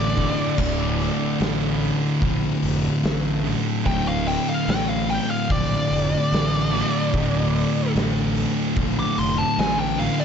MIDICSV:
0, 0, Header, 1, 6, 480
1, 0, Start_track
1, 0, Key_signature, -1, "minor"
1, 0, Tempo, 817439
1, 347, Time_signature, 4, 2, 24, 8
1, 6018, End_track
2, 0, Start_track
2, 0, Title_t, "Lead electric guitar"
2, 0, Program_c, 0, 29
2, 0, Note_on_c, 0, 74, 103
2, 810, Note_off_c, 0, 74, 0
2, 2268, Note_on_c, 0, 79, 117
2, 2385, Note_off_c, 0, 79, 0
2, 2397, Note_on_c, 0, 77, 87
2, 2509, Note_off_c, 0, 77, 0
2, 2512, Note_on_c, 0, 79, 89
2, 2626, Note_off_c, 0, 79, 0
2, 2639, Note_on_c, 0, 77, 104
2, 2750, Note_off_c, 0, 77, 0
2, 2761, Note_on_c, 0, 79, 108
2, 2871, Note_off_c, 0, 79, 0
2, 2874, Note_on_c, 0, 77, 102
2, 2987, Note_off_c, 0, 77, 0
2, 2998, Note_on_c, 0, 79, 108
2, 3109, Note_off_c, 0, 79, 0
2, 3116, Note_on_c, 0, 77, 105
2, 3228, Note_off_c, 0, 77, 0
2, 3239, Note_on_c, 0, 74, 101
2, 4649, Note_off_c, 0, 74, 0
2, 5279, Note_on_c, 0, 86, 106
2, 5389, Note_off_c, 0, 86, 0
2, 5397, Note_on_c, 0, 84, 94
2, 5508, Note_off_c, 0, 84, 0
2, 5510, Note_on_c, 0, 81, 100
2, 5624, Note_off_c, 0, 81, 0
2, 5635, Note_on_c, 0, 80, 101
2, 5747, Note_off_c, 0, 80, 0
2, 5750, Note_on_c, 0, 79, 110
2, 5864, Note_off_c, 0, 79, 0
2, 5867, Note_on_c, 0, 77, 100
2, 5983, Note_off_c, 0, 77, 0
2, 5992, Note_on_c, 0, 74, 91
2, 6018, Note_off_c, 0, 74, 0
2, 6018, End_track
3, 0, Start_track
3, 0, Title_t, "Distorted electric guitar"
3, 0, Program_c, 1, 30
3, 0, Note_on_c, 1, 38, 94
3, 0, Note_on_c, 1, 45, 105
3, 0, Note_on_c, 1, 50, 119
3, 94, Note_off_c, 1, 45, 0
3, 94, Note_off_c, 1, 50, 0
3, 97, Note_on_c, 1, 50, 98
3, 106, Note_on_c, 1, 45, 80
3, 116, Note_off_c, 1, 38, 0
3, 119, Note_on_c, 1, 38, 69
3, 329, Note_off_c, 1, 38, 0
3, 331, Note_on_c, 1, 38, 104
3, 332, Note_off_c, 1, 45, 0
3, 344, Note_on_c, 1, 45, 94
3, 354, Note_off_c, 1, 50, 0
3, 356, Note_on_c, 1, 50, 113
3, 2012, Note_off_c, 1, 45, 0
3, 2019, Note_off_c, 1, 50, 0
3, 2021, Note_on_c, 1, 50, 85
3, 2032, Note_on_c, 1, 45, 82
3, 2039, Note_off_c, 1, 38, 0
3, 2042, Note_on_c, 1, 38, 84
3, 2256, Note_off_c, 1, 45, 0
3, 2259, Note_off_c, 1, 38, 0
3, 2262, Note_on_c, 1, 38, 103
3, 2275, Note_on_c, 1, 45, 111
3, 2282, Note_off_c, 1, 50, 0
3, 2285, Note_on_c, 1, 50, 110
3, 3937, Note_off_c, 1, 45, 0
3, 3939, Note_off_c, 1, 50, 0
3, 3941, Note_on_c, 1, 50, 89
3, 3952, Note_on_c, 1, 45, 91
3, 3963, Note_off_c, 1, 38, 0
3, 3965, Note_on_c, 1, 38, 73
3, 4175, Note_off_c, 1, 45, 0
3, 4180, Note_off_c, 1, 38, 0
3, 4182, Note_on_c, 1, 38, 105
3, 4194, Note_on_c, 1, 45, 115
3, 4202, Note_off_c, 1, 50, 0
3, 4205, Note_on_c, 1, 50, 104
3, 5854, Note_off_c, 1, 45, 0
3, 5855, Note_off_c, 1, 50, 0
3, 5858, Note_on_c, 1, 50, 89
3, 5871, Note_on_c, 1, 45, 85
3, 5879, Note_off_c, 1, 38, 0
3, 5882, Note_on_c, 1, 38, 83
3, 6018, Note_off_c, 1, 38, 0
3, 6018, Note_off_c, 1, 45, 0
3, 6018, Note_off_c, 1, 50, 0
3, 6018, End_track
4, 0, Start_track
4, 0, Title_t, "Distorted electric guitar"
4, 0, Program_c, 2, 30
4, 0, Note_on_c, 2, 38, 82
4, 0, Note_on_c, 2, 45, 92
4, 0, Note_on_c, 2, 50, 102
4, 336, Note_off_c, 2, 38, 0
4, 336, Note_off_c, 2, 45, 0
4, 338, Note_on_c, 2, 38, 101
4, 351, Note_on_c, 2, 45, 103
4, 360, Note_off_c, 2, 50, 0
4, 362, Note_on_c, 2, 50, 109
4, 1295, Note_off_c, 2, 45, 0
4, 1300, Note_off_c, 2, 38, 0
4, 1302, Note_on_c, 2, 38, 83
4, 1315, Note_on_c, 2, 45, 88
4, 1324, Note_off_c, 2, 50, 0
4, 1326, Note_on_c, 2, 50, 89
4, 2257, Note_off_c, 2, 45, 0
4, 2263, Note_off_c, 2, 38, 0
4, 2265, Note_on_c, 2, 38, 92
4, 2278, Note_on_c, 2, 45, 101
4, 2284, Note_off_c, 2, 50, 0
4, 2286, Note_on_c, 2, 50, 99
4, 3219, Note_off_c, 2, 45, 0
4, 3225, Note_off_c, 2, 38, 0
4, 3228, Note_on_c, 2, 38, 82
4, 3240, Note_on_c, 2, 45, 93
4, 3245, Note_off_c, 2, 50, 0
4, 3247, Note_on_c, 2, 50, 88
4, 4179, Note_off_c, 2, 45, 0
4, 4187, Note_off_c, 2, 38, 0
4, 4189, Note_on_c, 2, 38, 91
4, 4204, Note_on_c, 2, 45, 114
4, 4211, Note_off_c, 2, 50, 0
4, 4213, Note_on_c, 2, 50, 115
4, 5140, Note_off_c, 2, 45, 0
4, 5143, Note_off_c, 2, 38, 0
4, 5146, Note_on_c, 2, 38, 82
4, 5158, Note_on_c, 2, 45, 85
4, 5166, Note_off_c, 2, 50, 0
4, 5168, Note_on_c, 2, 50, 88
4, 6018, Note_off_c, 2, 38, 0
4, 6018, Note_off_c, 2, 45, 0
4, 6018, Note_off_c, 2, 50, 0
4, 6018, End_track
5, 0, Start_track
5, 0, Title_t, "Fingered electric bass"
5, 0, Program_c, 3, 33
5, 0, Note_on_c, 3, 33, 105
5, 151, Note_off_c, 3, 33, 0
5, 339, Note_on_c, 3, 26, 91
5, 633, Note_off_c, 3, 26, 0
5, 822, Note_on_c, 3, 33, 85
5, 1115, Note_off_c, 3, 33, 0
5, 1303, Note_on_c, 3, 34, 97
5, 1450, Note_off_c, 3, 34, 0
5, 1540, Note_on_c, 3, 29, 95
5, 1688, Note_off_c, 3, 29, 0
5, 1781, Note_on_c, 3, 33, 92
5, 2074, Note_off_c, 3, 33, 0
5, 2268, Note_on_c, 3, 26, 94
5, 2559, Note_off_c, 3, 26, 0
5, 2745, Note_on_c, 3, 33, 89
5, 3037, Note_off_c, 3, 33, 0
5, 3231, Note_on_c, 3, 34, 98
5, 3376, Note_off_c, 3, 34, 0
5, 3466, Note_on_c, 3, 29, 87
5, 3612, Note_off_c, 3, 29, 0
5, 3711, Note_on_c, 3, 33, 95
5, 4001, Note_off_c, 3, 33, 0
5, 4193, Note_on_c, 3, 26, 100
5, 4482, Note_off_c, 3, 26, 0
5, 4668, Note_on_c, 3, 33, 85
5, 4959, Note_off_c, 3, 33, 0
5, 5147, Note_on_c, 3, 34, 97
5, 5293, Note_off_c, 3, 34, 0
5, 5389, Note_on_c, 3, 29, 85
5, 5533, Note_off_c, 3, 29, 0
5, 5625, Note_on_c, 3, 33, 101
5, 5916, Note_off_c, 3, 33, 0
5, 6018, End_track
6, 0, Start_track
6, 0, Title_t, "Drums"
6, 103, Note_on_c, 9, 36, 87
6, 103, Note_on_c, 9, 46, 71
6, 162, Note_off_c, 9, 36, 0
6, 162, Note_off_c, 9, 46, 0
6, 341, Note_on_c, 9, 49, 106
6, 342, Note_on_c, 9, 36, 116
6, 399, Note_off_c, 9, 49, 0
6, 401, Note_off_c, 9, 36, 0
6, 582, Note_on_c, 9, 46, 63
6, 594, Note_on_c, 9, 38, 37
6, 640, Note_off_c, 9, 46, 0
6, 653, Note_off_c, 9, 38, 0
6, 821, Note_on_c, 9, 46, 86
6, 833, Note_on_c, 9, 38, 119
6, 880, Note_off_c, 9, 46, 0
6, 892, Note_off_c, 9, 38, 0
6, 1061, Note_on_c, 9, 46, 70
6, 1119, Note_off_c, 9, 46, 0
6, 1301, Note_on_c, 9, 46, 90
6, 1303, Note_on_c, 9, 36, 125
6, 1360, Note_off_c, 9, 46, 0
6, 1362, Note_off_c, 9, 36, 0
6, 1541, Note_on_c, 9, 46, 58
6, 1600, Note_off_c, 9, 46, 0
6, 1782, Note_on_c, 9, 46, 89
6, 1794, Note_on_c, 9, 38, 124
6, 1841, Note_off_c, 9, 46, 0
6, 1853, Note_off_c, 9, 38, 0
6, 2025, Note_on_c, 9, 46, 63
6, 2083, Note_off_c, 9, 46, 0
6, 2263, Note_on_c, 9, 46, 83
6, 2267, Note_on_c, 9, 36, 102
6, 2322, Note_off_c, 9, 46, 0
6, 2325, Note_off_c, 9, 36, 0
6, 2508, Note_on_c, 9, 46, 68
6, 2567, Note_off_c, 9, 46, 0
6, 2748, Note_on_c, 9, 46, 92
6, 2760, Note_on_c, 9, 38, 127
6, 2807, Note_off_c, 9, 46, 0
6, 2819, Note_off_c, 9, 38, 0
6, 2991, Note_on_c, 9, 46, 73
6, 3050, Note_off_c, 9, 46, 0
6, 3230, Note_on_c, 9, 46, 93
6, 3231, Note_on_c, 9, 36, 124
6, 3288, Note_off_c, 9, 46, 0
6, 3290, Note_off_c, 9, 36, 0
6, 3472, Note_on_c, 9, 46, 70
6, 3531, Note_off_c, 9, 46, 0
6, 3714, Note_on_c, 9, 46, 96
6, 3726, Note_on_c, 9, 38, 127
6, 3772, Note_off_c, 9, 46, 0
6, 3785, Note_off_c, 9, 38, 0
6, 3953, Note_on_c, 9, 46, 77
6, 4012, Note_off_c, 9, 46, 0
6, 4191, Note_on_c, 9, 46, 85
6, 4192, Note_on_c, 9, 36, 109
6, 4250, Note_off_c, 9, 36, 0
6, 4250, Note_off_c, 9, 46, 0
6, 4432, Note_on_c, 9, 46, 68
6, 4491, Note_off_c, 9, 46, 0
6, 4671, Note_on_c, 9, 46, 91
6, 4683, Note_on_c, 9, 38, 124
6, 4730, Note_off_c, 9, 46, 0
6, 4742, Note_off_c, 9, 38, 0
6, 4908, Note_on_c, 9, 46, 63
6, 4967, Note_off_c, 9, 46, 0
6, 5145, Note_on_c, 9, 46, 90
6, 5148, Note_on_c, 9, 36, 127
6, 5204, Note_off_c, 9, 46, 0
6, 5207, Note_off_c, 9, 36, 0
6, 5386, Note_on_c, 9, 46, 56
6, 5445, Note_off_c, 9, 46, 0
6, 5627, Note_on_c, 9, 46, 91
6, 5640, Note_on_c, 9, 38, 123
6, 5686, Note_off_c, 9, 46, 0
6, 5698, Note_off_c, 9, 38, 0
6, 5868, Note_on_c, 9, 46, 68
6, 5927, Note_off_c, 9, 46, 0
6, 6018, End_track
0, 0, End_of_file